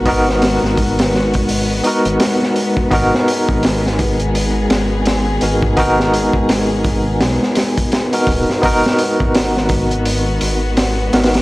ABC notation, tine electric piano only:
X:1
M:4/4
L:1/16
Q:"Swing 16ths" 1/4=84
K:G#m
V:1 name="Tine electric piano"
[B,DFA]8- [B,DFA]2 [B,DFA]6 | [B,DFA]12- [B,DFA]2 [B,DFA]2 | [B,DFA]8- [B,DFA]2 z3 [B,DFA]3 | [B,DFA]12- [B,DFA]2 [B,DFA]2 |]